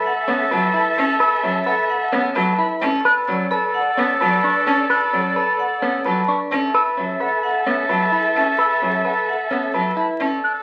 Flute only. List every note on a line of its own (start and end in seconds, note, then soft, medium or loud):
0.74 0.82 B5 medium
1.20 1.29 E6 loud
1.66 1.75 F#5 medium
2.59 2.67 B5 medium
3.05 3.14 F#6 loud
3.51 3.60 A5 medium
4.44 4.52 C#6 medium
4.90 4.99 F#6 loud
5.36 5.45 A5 medium
6.28 6.37 C#6 medium
6.74 6.83 E6 medium
7.21 7.30 F#5 medium
8.13 8.22 B5 medium
8.59 8.68 E6 medium
9.05 9.14 F#5 medium
9.98 10.06 B5 medium
10.44 10.53 F#6 medium